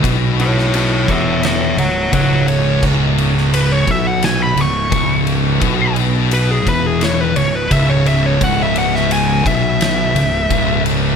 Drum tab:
CC |----------------|x---------------|----------------|----------------|
RD |x-x-x-x-x-x-x-x-|--x-x-x-x-x-x-x-|x-x-x-x-x-x-x-x-|x-x-x-x-x-x-x-x-|
SD |---o----o-------|---o----o-------|--------o-------|---o----o-------|
BD |o-----o-----o---|o-----o-----o---|o-----o-----o---|o-----o-----o---|